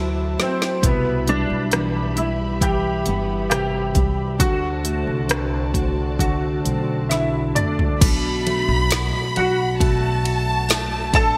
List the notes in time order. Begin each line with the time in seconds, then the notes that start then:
Already playing: D2 F#3 A3 C4 E4 F#4 C5 E5 A5
0.38 F#3 A3, snare
0.42 C4
0.62 snare
0.82 C2 B2 B3 E4 G4 B4 E5 B5, kick, closed hi-hat
1.26 G3 D4, closed hi-hat
1.50 B1
1.71 E3 B3, cross-stick, closed hi-hat
2.16 G3 E4, closed hi-hat
2.60 E3 G4, kick, closed hi-hat
3.05 G1 G3 B3, closed hi-hat
3.49 C3 E4 G4, cross-stick, closed hi-hat
3.94 C2 G3, kick, closed hi-hat
4.39 D2 D3 F#4 C5 D5 A5, kick, closed hi-hat
4.83 A3, closed hi-hat
5.07 C2
5.27 D3 C4, cross-stick, closed hi-hat
5.72 A3 F#4, kick, closed hi-hat
6.18 D3 A3 F#4, kick, closed hi-hat
6.64 B1 A3 C4, closed hi-hat
7.09 D3 E4 F#4 E5, snare, closed hi-hat
7.55 A3 D4 D5, closed hi-hat, mid tom
7.79 floor tom
8.01 B1 B2 B5, kick, crash, ride
8.46 F#3 A3, ride
8.69 B1
8.91 B2 F#4, snare, ride, tambourine
9.35 B1 F#3 D4 F#4 F#5, ride
9.80 B2 A3 A5, kick, ride
10.24 F#4, ride
10.69 A3, snare, ride, tambourine
11.13 A1 D4 A4 A5, kick, snare, ride